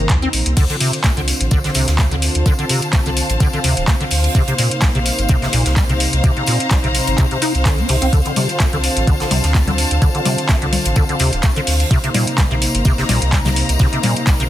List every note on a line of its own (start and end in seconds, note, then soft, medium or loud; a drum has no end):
0.00 0.53 C3 medium
0.00 0.11 D#3 loud
0.00 0.53 A#3 medium
0.00 0.53 D#4 medium
0.00 0.55 C5 medium
0.00 0.57 F5 medium
0.00 0.57 A#5 medium
0.10 0.26 D#2 loud
0.10 0.17 F3 medium
0.10 kick loud
0.10 clap loud
0.10 closed hi-hat medium
0.22 0.28 C4 loud
0.22 closed hi-hat soft
0.33 0.42 A#1 medium
0.33 open hi-hat medium
0.46 0.53 C2 loud
0.46 closed hi-hat medium
0.57 0.66 D2 loud
0.57 0.64 D3 loud
0.57 4.31 D3 medium
0.57 4.31 C4 medium
0.57 4.31 F4 medium
0.57 14.49 C5 medium
0.57 kick loud
0.57 closed hi-hat medium
0.57 crash medium
0.57 tambourine medium
0.70 0.76 D3 medium
0.70 closed hi-hat soft
0.80 0.91 C3 medium
0.80 open hi-hat loud
0.80 tambourine medium
0.93 closed hi-hat medium
1.04 1.11 A3 medium
1.04 kick loud
1.04 snare loud
1.04 clap loud
1.04 closed hi-hat medium
1.04 tambourine medium
1.17 1.32 C2 medium
1.17 1.21 D3 loud
1.17 14.49 F5 medium
1.17 closed hi-hat soft
1.28 open hi-hat medium
1.28 tambourine medium
1.41 1.48 A1 loud
1.41 closed hi-hat medium
1.51 1.68 A1 medium
1.51 1.58 D3 loud
1.51 kick loud
1.51 closed hi-hat medium
1.51 tambourine medium
1.64 1.70 D3 medium
1.64 snare soft
1.64 closed hi-hat soft
1.74 1.84 C2 loud
1.74 1.86 C3 medium
1.74 open hi-hat loud
1.74 tambourine medium
1.87 2.29 D2 loud
1.87 snare medium
1.87 closed hi-hat medium
1.98 2.06 A3 medium
1.98 kick loud
1.98 snare loud
1.98 clap loud
1.98 closed hi-hat medium
1.98 tambourine medium
2.11 2.15 D3 loud
2.11 closed hi-hat soft
2.22 4.35 A5 medium
2.22 open hi-hat medium
2.22 tambourine medium
2.35 2.42 D2 medium
2.35 closed hi-hat medium
2.46 2.53 D3 loud
2.46 kick loud
2.46 closed hi-hat medium
2.46 tambourine medium
2.59 2.65 D3 medium
2.59 closed hi-hat soft
2.69 2.80 C3 medium
2.69 open hi-hat loud
2.69 tambourine medium
2.82 closed hi-hat medium
2.93 3.00 A3 medium
2.93 kick loud
2.93 snare loud
2.93 clap loud
2.93 closed hi-hat medium
2.93 tambourine medium
3.06 3.21 C2 medium
3.06 3.10 D3 loud
3.06 closed hi-hat soft
3.17 open hi-hat medium
3.17 tambourine medium
3.30 3.37 A1 loud
3.30 closed hi-hat medium
3.30 closed hi-hat soft
3.40 3.49 C2 loud
3.40 3.47 D3 loud
3.40 kick loud
3.40 closed hi-hat medium
3.40 tambourine medium
3.53 3.59 D3 medium
3.53 closed hi-hat soft
3.64 3.73 D2 medium
3.64 3.75 C3 medium
3.64 open hi-hat loud
3.64 tambourine medium
3.77 3.84 D1 medium
3.77 closed hi-hat medium
3.88 3.95 A3 medium
3.88 kick loud
3.88 snare loud
3.88 clap loud
3.88 closed hi-hat medium
3.88 tambourine medium
4.01 4.04 D3 loud
4.01 closed hi-hat soft
4.11 4.28 D2 loud
4.11 open hi-hat medium
4.11 open hi-hat loud
4.24 closed hi-hat medium
4.35 4.44 C2 loud
4.35 8.09 C3 medium
4.35 4.42 C3 loud
4.35 6.22 A#3 medium
4.35 8.09 D#4 medium
4.35 kick loud
4.35 closed hi-hat medium
4.35 tambourine medium
4.48 4.54 C3 medium
4.48 closed hi-hat soft
4.58 4.69 A#2 medium
4.58 open hi-hat loud
4.58 tambourine medium
4.71 closed hi-hat medium
4.81 4.89 G3 medium
4.81 kick loud
4.81 snare loud
4.81 clap loud
4.81 closed hi-hat medium
4.81 tambourine medium
4.95 5.10 A#1 medium
4.95 4.99 C3 loud
4.95 closed hi-hat soft
5.06 open hi-hat loud
5.06 tambourine medium
5.19 5.26 G1 loud
5.19 closed hi-hat medium
5.29 5.46 G1 medium
5.29 5.36 C3 loud
5.29 kick loud
5.29 closed hi-hat medium
5.29 tambourine medium
5.42 5.48 C3 medium
5.42 snare soft
5.42 closed hi-hat soft
5.53 5.62 A#1 loud
5.53 5.64 A#2 medium
5.53 open hi-hat loud
5.53 tambourine medium
5.65 6.06 C2 loud
5.65 snare soft
5.65 closed hi-hat medium
5.76 5.84 G3 medium
5.76 kick loud
5.76 snare loud
5.76 clap loud
5.76 closed hi-hat soft
5.76 tambourine medium
5.89 5.93 C3 loud
5.89 closed hi-hat soft
5.94 8.13 A#5 medium
6.00 open hi-hat loud
6.00 tambourine medium
6.13 6.20 C2 medium
6.13 closed hi-hat medium
6.24 6.31 C3 loud
6.24 11.87 C4 medium
6.24 kick loud
6.24 closed hi-hat soft
6.24 tambourine medium
6.37 6.43 C3 medium
6.37 closed hi-hat soft
6.46 6.58 A#2 medium
6.46 open hi-hat loud
6.46 tambourine medium
6.60 closed hi-hat soft
6.71 6.78 G3 medium
6.71 kick loud
6.71 snare loud
6.71 clap loud
6.71 closed hi-hat medium
6.71 tambourine medium
6.84 6.99 A#1 medium
6.84 6.87 C3 loud
6.84 closed hi-hat soft
6.95 open hi-hat loud
6.95 tambourine medium
7.07 7.15 G1 loud
7.07 closed hi-hat soft
7.18 7.25 C3 loud
7.18 kick loud
7.18 clap medium
7.18 closed hi-hat soft
7.18 tambourine medium
7.31 7.37 C3 medium
7.31 closed hi-hat soft
7.42 7.53 D#4 loud
7.42 open hi-hat loud
7.42 tambourine medium
7.55 7.84 C2 loud
7.55 closed hi-hat soft
7.66 7.80 D3 medium
7.66 kick loud
7.66 snare loud
7.66 clap loud
7.66 closed hi-hat medium
7.66 tambourine medium
7.78 7.87 C4 medium
7.78 closed hi-hat soft
7.89 7.98 C2 medium
7.89 7.96 C3 medium
7.89 open hi-hat medium
8.02 8.09 C2 loud
8.02 8.08 C4 medium
8.02 closed hi-hat soft
8.13 8.22 D2 loud
8.13 11.87 D3 medium
8.13 8.20 D3 loud
8.13 11.87 F4 medium
8.13 kick loud
8.13 closed hi-hat medium
8.13 tambourine medium
8.26 8.32 D3 medium
8.26 closed hi-hat soft
8.36 8.47 C3 medium
8.36 11.91 A5 medium
8.36 open hi-hat loud
8.36 tambourine medium
8.36 low conga medium
8.49 closed hi-hat soft
8.60 8.67 A3 medium
8.60 kick loud
8.60 snare loud
8.60 clap loud
8.60 closed hi-hat soft
8.60 tambourine medium
8.73 8.88 C2 medium
8.73 8.77 D3 loud
8.73 closed hi-hat soft
8.83 open hi-hat medium
8.83 tambourine medium
8.96 9.04 A1 loud
8.96 closed hi-hat soft
9.07 9.24 A1 medium
9.07 9.14 D3 loud
9.07 kick loud
9.07 closed hi-hat medium
9.07 tambourine medium
9.20 9.26 D3 medium
9.20 snare soft
9.20 closed hi-hat soft
9.31 9.40 C2 loud
9.31 9.42 C3 medium
9.31 open hi-hat loud
9.31 tambourine medium
9.31 low conga medium
9.43 9.84 D2 loud
9.43 snare medium
9.43 closed hi-hat medium
9.55 9.62 A3 medium
9.55 kick loud
9.55 snare loud
9.55 clap loud
9.55 closed hi-hat medium
9.55 tambourine medium
9.67 9.71 D3 loud
9.67 closed hi-hat soft
9.67 low conga medium
9.78 open hi-hat medium
9.78 tambourine medium
9.91 9.98 D2 medium
9.91 closed hi-hat medium
10.02 10.09 D3 loud
10.02 kick loud
10.02 closed hi-hat medium
10.02 tambourine medium
10.15 10.21 D3 medium
10.15 closed hi-hat soft
10.25 10.36 C3 medium
10.25 open hi-hat loud
10.25 tambourine medium
10.25 low conga medium
10.38 closed hi-hat medium
10.49 10.56 A3 medium
10.49 kick loud
10.49 snare loud
10.49 clap loud
10.49 closed hi-hat medium
10.49 tambourine medium
10.62 10.77 C2 medium
10.62 10.65 D3 loud
10.62 closed hi-hat soft
10.73 open hi-hat medium
10.73 tambourine medium
10.73 low conga medium
10.85 10.93 A1 loud
10.85 closed hi-hat soft
10.85 closed hi-hat medium
10.96 11.05 C2 loud
10.96 11.03 D3 loud
10.96 kick loud
10.96 closed hi-hat medium
10.96 tambourine medium
11.09 11.15 D3 medium
11.09 closed hi-hat soft
11.19 11.29 D2 medium
11.19 11.31 C3 medium
11.19 open hi-hat loud
11.19 tambourine medium
11.33 11.40 D1 medium
11.33 closed hi-hat medium
11.43 11.51 A3 medium
11.43 kick loud
11.43 snare loud
11.43 clap loud
11.43 closed hi-hat medium
11.43 tambourine medium
11.56 11.60 D3 loud
11.56 closed hi-hat soft
11.67 11.84 D2 loud
11.67 open hi-hat medium
11.80 closed hi-hat medium
11.91 12.00 C2 loud
11.91 14.49 C3 medium
11.91 11.98 C3 loud
11.91 14.49 A#3 medium
11.91 14.49 D#4 medium
11.91 kick loud
11.91 closed hi-hat medium
11.91 tambourine medium
12.04 12.10 C3 medium
12.04 closed hi-hat soft
12.14 12.25 A#2 medium
12.14 open hi-hat loud
12.14 tambourine medium
12.14 low conga medium
12.27 14.49 A#5 medium
12.27 closed hi-hat medium
12.38 12.45 G3 medium
12.38 kick loud
12.38 snare loud
12.38 clap loud
12.38 closed hi-hat medium
12.38 tambourine medium
12.51 12.66 A#1 medium
12.51 12.54 C3 loud
12.51 closed hi-hat soft
12.62 open hi-hat medium
12.62 tambourine medium
12.74 12.82 G1 loud
12.74 closed hi-hat medium
12.85 13.02 G1 medium
12.85 12.92 C3 loud
12.85 kick loud
12.85 closed hi-hat medium
12.85 tambourine medium
12.98 13.04 C3 medium
12.98 snare soft
12.98 closed hi-hat soft
13.09 13.18 A#1 loud
13.09 13.20 A#2 medium
13.09 snare loud
13.09 open hi-hat loud
13.09 tambourine medium
13.09 low conga medium
13.22 13.62 C2 loud
13.22 closed hi-hat medium
13.33 13.40 G3 medium
13.33 kick loud
13.33 clap loud
13.33 closed hi-hat medium
13.33 tambourine medium
13.45 13.49 C3 loud
13.45 snare loud
13.45 closed hi-hat soft
13.45 tambourine medium
13.45 low conga medium
13.56 open hi-hat medium
13.69 13.76 C2 medium
13.69 closed hi-hat medium
13.69 tambourine medium
13.79 13.87 C3 loud
13.79 kick loud
13.79 snare loud
13.79 closed hi-hat medium
13.79 tambourine medium
13.93 13.99 C3 medium
13.93 closed hi-hat soft
14.03 14.14 A#2 medium
14.03 open hi-hat loud
14.03 tambourine medium
14.03 low conga medium
14.16 closed hi-hat medium
14.26 14.34 G3 medium
14.26 kick loud
14.26 snare loud
14.26 clap loud
14.26 closed hi-hat medium
14.26 tambourine medium
14.40 14.49 A#1 medium
14.40 14.43 C3 loud
14.40 closed hi-hat soft